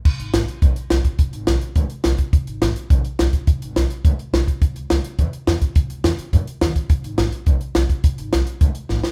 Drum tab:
CC |x-------|--------|--------|--------|
HH |-xxxxxxx|xxxxxxxx|xxxxxxxx|xxxxxxxx|
SD |--o---o-|--o---o-|--o---o-|--o---o-|
BD |o---o--o|o---o--o|o---o--o|o---o--o|

CC |--------|--------|--------|--------|
HH |xxxxxxxx|xxxxxxxx|xxxxxxxx|xxxxxx--|
SD |--o---o-|--o---o-|--o---o-|--o---oo|
BD |o---o--o|o---o--o|o---o--o|o---o---|